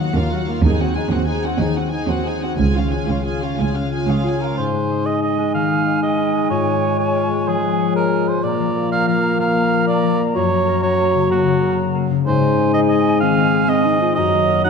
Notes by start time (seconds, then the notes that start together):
Already playing: D#3 F#3 F4 A#4
0.00 F#3 D#4 F#4 F#5
0.15 D#2 A#3 F4 A#4 F5
0.31 F#3 F4 F#4 F#5
0.48 A#3 D#4 F4 F5
0.63 D#2 D#3 D#4 G#4 G#5
0.79 C4 D#4 F#4 F#5
0.95 G#3 D#4 G#4 G#5
1.11 D#2 C4 F#4 C5 F#5
1.26 D#4 F#4 G#4 G#5
1.43 C4 D#4 F#4 F#5
1.59 D#2 D#3 D#4 G#4 G#5
1.75 G#3 C4 F#4 F#5
1.91 D#4 G#4 G#5
2.08 D#2 C4 F#4 C5 F#5
2.24 D#4 F#4 G#4 G#5
2.41 C4 D#4 F#4 F#5
2.57 C#2 C#3 F4 G#4 G#5
2.74 C#4 F4 F5
2.90 G#3 F4 G#4 G#5
3.07 C#2 C#4 F4 C#5 F5
3.24 F4 G#4 G#5
3.41 C#4 F4 F5
3.56 C#2 C#3 F4 G#4 G#5
3.73 G#3 C#4 F4 F5
3.89 C#4 F4 G#4 G#5
4.07 C#2 C#4 F4 G#4 C#5 F5
4.24 F4 G#4 G#5
4.40 C#4 F4 A#4 F5
4.56 G#2 G#3 D#4 C5 G#5
4.73 G#3
4.90 D#5
5.05 G#4 D#5
5.22 D#4 D#5
5.37 G#3
5.54 D#3 F5
5.70 G#3
5.86 D#5
6.02 G#4 D#5
6.18 D#4
6.34 G#3
6.50 G#2 F4 C#5
6.66 G#3
6.82 C#5
6.98 G#4 C#5
7.15 F4
7.31 G#3
7.47 F3 G#4
7.63 G#3
7.80 C#5
7.95 G#4 A#4
8.11 F4
8.27 G#3 C5
8.43 A#2 A#3 D5 A#5
8.59 F3
8.76 A#4
8.91 F4 F5
9.07 F3 F5
9.24 A#3
9.39 F3 F5
9.56 A#3
9.72 A#4
9.87 F4 D5
10.03 F3
10.19 A#3
10.35 F#2 F#3 F#4 C#5
10.51 A#3
10.67 A#4
10.82 F#4 C#5
10.98 A#3
11.14 C#3
11.30 A#3 F#4
11.46 C#3
11.62 A#4
11.78 F#4
11.94 A#3
12.10 C#3
12.25 G#2 G#3 D#4 C5 G#5
12.42 C4
12.58 G#4
12.74 C5 D#5
12.88 D#4 D#5
13.06 C4
13.20 D#3 C4 F5
13.37 C4
13.53 G#4
13.68 C4 C5 D#5
13.85 D#4
14.01 C4 F4
14.15 F#2 F#3 F#4 D#5 A#5
14.32 A#3
14.49 A#4
14.63 D#4 F#5 A#5